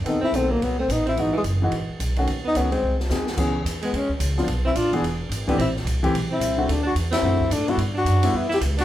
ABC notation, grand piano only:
X:1
M:4/4
L:1/8
Q:"Swing" 1/4=218
K:C#m
V:1 name="Grand piano"
[D,B,=CA] z [D,B,CA] z4 z | [E,G,DF] z2 [E,G,DF] z3 [D,A,CF] | z2 [D,A,CF] z3 [D,G,^B,G] z | [E,B,CG] z6 [=F,B,=D=F] |
z3 [E,B,=DG] z3 [E,A,=C=G] | z3 [E,A,=C=G] z3 [=D,A,CF] | z4 [=D,A,=CF] z2 [D,=G,B,E] | z3 [=D,=G,B,E] z4 |]